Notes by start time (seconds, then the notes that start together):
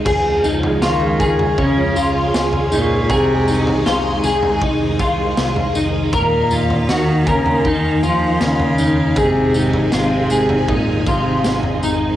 0.05 C#2 C#3 F3 G#3 F4 G#4, kick, floor tom, crash, tambourine
0.44 C#2 D#4, tambourine
0.63 floor tom
0.82 C#2 D#3 F4 C#6, snare, tambourine
1.07 F6
1.20 C#2 G#4, kick, floor tom, tambourine
1.30 G#6
1.39 floor tom
1.58 C#2 C#3 C#4, kick, floor tom
1.95 C#2 F4, tambourine
2.34 C#2 G#5, snare, tambourine
2.53 floor tom
2.58 C6
2.72 C#2 A#2 D#4, tambourine
2.82 C#6
3.09 C2 C3 D#3 D#4 G#4 A#5, kick, floor tom, tambourine
3.35 D#6
3.48 C2 D#4, tambourine
3.67 floor tom
3.86 C2 F4, snare, tambourine
4.24 C2 G#4, tambourine
4.43 floor tom
4.61 C2 D#4, kick, floor tom
4.99 C2 F4, kick, tambourine
5.37 C2, snare, tambourine
5.56 floor tom
5.75 C2 D#4, tambourine
6.13 D#2 A#2 A#3 D#4 A#4 F5, kick, floor tom, tambourine
6.51 D#2 F4, tambourine
6.70 floor tom
6.89 D#2 D#3 F#4, snare, tambourine
7.26 D#2 A#4 G#5, kick, tambourine
7.31 C#3
7.46 floor tom
7.50 C6
7.65 D#2 D#3 D#4, kick, floor tom
8.03 D#2 F3 F4, tambourine
8.41 D#2 C#3, snare, tambourine
8.60 floor tom
8.78 D#2 D#4, tambourine
9.16 G#1 C3 G#3 D#4 G#4, kick, floor tom, tambourine
9.21 C3
9.54 G#1 D#4, tambourine
9.74 floor tom
9.92 G#1 F4, snare, tambourine
9.97 C3
10.30 G#1 G#4, tambourine
10.49 floor tom
10.68 G#1 A#2 D#4, kick, floor tom
11.06 G#1 C3 F4, kick, tambourine
11.44 G#1, snare, tambourine
11.63 floor tom
11.83 G#1 D#4 A#5, tambourine